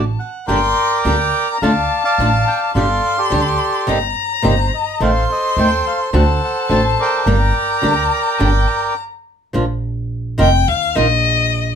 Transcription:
0.00 0.15 A1 medium
0.00 0.20 A5 medium
0.19 0.46 F#5 medium
0.47 0.72 G1 medium
0.47 0.57 D3 medium
0.47 0.58 G3 medium
0.47 0.58 A#3 medium
0.47 0.58 D4 medium
0.47 0.58 G4 medium
0.47 1.57 A#4 medium
0.47 1.58 D5 medium
0.47 1.58 G5 medium
0.47 1.01 C6 medium
1.04 1.29 D2 medium
1.04 1.14 D3 medium
1.04 1.14 G3 medium
1.04 1.14 A#3 medium
1.04 1.15 D4 medium
1.04 1.15 G4 medium
1.04 1.63 A#5 medium
1.54 1.62 A#5 medium
1.61 1.86 D2 medium
1.61 1.71 D3 medium
1.61 1.71 A3 medium
1.61 1.72 D4 medium
1.61 1.72 F4 medium
1.61 2.03 D5 medium
1.61 2.03 F5 medium
1.61 2.75 A5 medium
1.61 2.03 A5 medium
2.04 2.72 D5 medium
2.04 2.71 F5 medium
2.04 2.48 A5 medium
2.18 2.42 A1 medium
2.18 2.28 D3 medium
2.18 2.28 A3 medium
2.18 2.28 D4 medium
2.18 2.29 F4 medium
2.48 2.60 G5 medium
2.75 2.99 G1 medium
2.75 2.85 D3 medium
2.75 2.85 G3 medium
2.75 2.85 D4 medium
2.75 2.85 G4 medium
2.75 3.17 A4 medium
2.75 3.17 D5 medium
2.75 3.19 F5 medium
2.75 3.89 C6 medium
3.18 3.99 G4 medium
3.18 3.99 A4 soft
3.18 3.99 D5 medium
3.30 3.56 D2 medium
3.30 3.40 D3 medium
3.30 3.40 G3 medium
3.30 3.41 D4 medium
3.30 3.41 G4 medium
3.87 4.12 G1 medium
3.87 3.97 C3 medium
3.87 3.97 G3 medium
3.87 3.97 A#3 medium
3.87 3.97 D#4 medium
3.87 3.98 G4 medium
3.87 5.03 A#5 medium
4.42 4.69 G1 medium
4.42 4.53 C3 medium
4.42 4.53 G3 medium
4.42 4.53 A#3 medium
4.42 4.53 D#4 medium
4.42 4.54 G4 medium
4.42 4.71 C5 medium
4.74 5.00 D#5 medium
5.00 5.25 A1 medium
5.00 5.10 D#3 medium
5.00 5.10 A3 medium
5.00 5.11 C4 medium
5.00 6.10 A4 medium
5.00 6.10 C5 medium
5.00 5.29 F5 medium
5.00 6.15 C6 medium
5.32 5.60 D#5 medium
5.57 5.81 D#2 medium
5.57 5.67 D#3 medium
5.57 5.67 A3 medium
5.57 5.67 C4 medium
5.57 5.85 G5 medium
5.87 6.00 F5 medium
6.13 6.37 D2 medium
6.13 6.23 D3 medium
6.13 6.23 A3 medium
6.13 6.23 C4 medium
6.13 6.23 F#4 medium
6.13 7.23 A4 medium
6.13 7.23 C5 medium
6.13 6.41 F#5 medium
6.13 7.28 A5 medium
6.44 6.70 F#5 medium
6.69 6.94 A1 medium
6.69 6.79 D3 medium
6.69 6.80 A3 medium
6.69 6.80 C4 medium
6.69 6.80 F#4 medium
6.69 6.84 A5 medium
7.00 8.94 A#4 medium
7.00 8.94 D5 medium
7.00 8.95 G5 medium
7.26 7.50 G1 medium
7.26 7.36 D3 medium
7.26 7.36 G3 medium
7.26 7.36 A#3 medium
7.26 7.36 D4 medium
7.26 7.36 G4 medium
7.26 8.42 A#5 medium
7.82 8.07 D2 medium
7.82 7.92 D3 medium
7.82 7.92 G3 medium
7.82 7.92 A#3 medium
7.82 7.92 D4 medium
7.82 7.93 G4 medium
8.39 8.64 G1 medium
8.39 8.49 D3 medium
8.39 8.49 G3 medium
8.39 8.49 A#3 medium
8.39 8.49 D4 medium
8.39 8.50 G4 medium
8.39 8.69 G5 medium
8.67 8.97 A#5 medium
9.53 10.36 A#1 medium
9.53 9.63 F3 medium
9.53 9.64 A#3 medium
9.53 9.63 D4 medium
9.53 9.64 F4 medium
10.38 10.64 F1 medium
10.38 10.48 D#3 medium
10.38 10.48 A#3 medium
10.38 10.49 D#4 medium
10.38 10.48 F4 medium
10.38 10.49 A#4 medium
10.38 10.69 G5 medium
10.68 10.92 D#2 medium
10.68 10.98 F5 medium
10.95 11.75 A#1 medium
10.95 11.05 D#3 medium
10.95 11.06 A#3 medium
10.95 11.05 D#4 medium
10.95 11.06 F4 medium
10.95 11.06 A#4 medium
10.95 11.75 D#5 medium

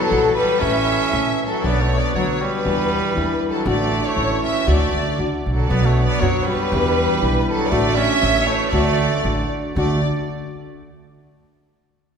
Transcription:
0.00 0.11 E2 medium
0.00 0.11 B2 medium
0.00 0.35 F#3 loud
0.00 0.36 A4 loud
0.10 0.28 A#1 loud
0.10 0.59 E3 medium
0.10 0.60 G3 medium
0.10 0.60 E4 medium
0.10 0.61 F#4 medium
0.34 0.61 G3 medium
0.34 0.58 B4 medium
0.60 0.95 A1 medium
0.60 1.12 A2 medium
0.60 1.10 E3 medium
0.60 1.11 A3 medium
0.60 1.39 C#4 loud
0.60 1.11 C#4 medium
0.60 1.12 A4 medium
0.60 1.39 E5 medium
1.11 1.31 A#1 medium
1.11 1.63 E3 soft
1.11 1.63 A3 medium
1.11 1.63 C#4 medium
1.11 1.64 A4 medium
1.46 1.66 F#3 medium
1.46 1.62 A4 medium
1.63 1.97 B1 medium
1.63 2.14 B2 medium
1.63 2.13 F#3 medium
1.63 2.13 B3 medium
1.63 1.82 B3 medium
1.63 2.15 D4 medium
1.63 2.14 F#4 medium
1.63 1.81 D5 medium
1.80 2.01 A3 medium
1.80 1.98 C#5 medium
1.97 2.15 B3 medium
1.97 2.15 D5 medium
2.14 2.32 D2 medium
2.14 2.64 F#3 medium
2.14 2.43 F#3 medium
2.14 2.65 B3 medium
2.14 2.64 D4 medium
2.14 2.65 F#4 medium
2.14 2.39 C#5 medium
2.41 3.41 G3 medium
2.41 3.41 B4 medium
2.64 3.15 E2 medium
2.64 2.98 E2 medium
2.64 3.15 B2 medium
2.64 3.14 E3 medium
2.64 3.14 G3 medium
2.64 3.15 D4 medium
2.64 3.15 E4 medium
3.15 3.33 E2 medium
3.15 3.65 E3 medium
3.15 3.65 G3 medium
3.15 3.65 D4 medium
3.15 3.66 E4 medium
3.49 3.69 F#3 medium
3.49 3.64 A4 medium
3.65 3.98 A1 loud
3.65 4.16 A2 medium
3.65 4.15 D3 medium
3.65 4.14 A3 medium
3.65 4.05 A3 loud
3.65 4.15 D4 medium
3.65 4.16 F#4 medium
3.65 4.05 D5 medium
4.05 4.42 A3 medium
4.05 4.43 C#5 medium
4.15 4.33 A1 medium
4.15 4.66 E3 medium
4.15 4.65 A3 medium
4.15 4.67 C#4 medium
4.15 4.67 E4 medium
4.43 4.69 C#4 medium
4.43 4.67 E5 medium
4.66 4.85 D2 loud
4.66 5.17 D3 medium
4.66 5.17 A3 medium
4.66 5.19 A3 medium
4.66 5.18 D4 medium
4.66 5.18 F#4 medium
4.66 5.20 D5 medium
4.94 5.16 D2 medium
5.18 5.43 C#2 medium
5.18 5.70 D3 medium
5.18 5.70 A3 medium
5.18 5.70 D4 medium
5.18 5.69 F#4 medium
5.46 5.68 B1 medium
5.52 5.70 F#3 medium
5.52 5.69 A4 medium
5.68 6.04 B1 loud
5.68 6.22 B2 medium
5.68 6.20 F#3 medium
5.68 5.87 B3 medium
5.68 6.21 B3 medium
5.68 6.22 D4 medium
5.68 6.22 F#4 medium
5.68 5.87 D5 medium
5.86 6.02 A3 medium
5.86 6.04 C#5 medium
6.03 6.22 B3 medium
6.03 6.20 D5 loud
6.20 6.39 F#2 loud
6.20 6.48 F#3 medium
6.20 6.48 B3 medium
6.20 6.47 D4 medium
6.20 6.47 F#4 medium
6.20 6.47 C#5 medium
6.45 7.47 G3 medium
6.45 6.73 D4 soft
6.45 6.72 F#4 medium
6.45 7.46 B4 loud
6.49 6.73 B3 soft
6.72 7.05 E2 loud
6.72 7.22 E2 medium
6.72 7.22 B2 medium
6.72 7.20 E3 medium
6.72 7.20 G3 medium
6.72 7.21 D4 medium
6.72 7.22 E4 medium
7.21 7.39 B1 medium
7.21 7.71 E3 medium
7.21 7.71 G3 medium
7.21 7.70 D4 medium
7.21 7.72 E4 medium
7.51 7.72 F#3 medium
7.51 7.69 A4 medium
7.68 8.22 A2 medium
7.68 8.20 D3 medium
7.68 7.98 A3 loud
7.68 8.20 A3 medium
7.68 8.22 D4 medium
7.68 7.96 D5 loud
7.72 8.05 A1 loud
7.72 8.22 F#4 medium
7.95 8.49 C#4 medium
7.95 8.47 E5 loud
8.21 8.40 A1 loud
8.21 8.72 E3 medium
8.21 8.72 A3 medium
8.21 8.73 C#4 medium
8.21 8.73 E4 medium
8.45 8.70 A3 medium
8.45 8.71 C#5 loud
8.69 9.06 D2 loud
8.69 9.24 D3 medium
8.69 9.47 A3 medium
8.69 9.24 A3 medium
8.69 9.45 D5 medium
8.73 9.24 D4 medium
8.73 9.25 F#4 medium
9.24 9.42 A1 loud
9.24 9.75 D3 medium
9.24 9.76 A3 medium
9.24 9.76 D4 medium
9.24 9.77 F#4 medium
9.75 10.01 D2 loud
9.75 9.97 D3 medium
9.75 9.98 A3 medium
9.75 10.01 A3 medium
9.75 9.98 D4 medium
9.75 9.98 F#4 medium
9.75 10.01 D5 medium

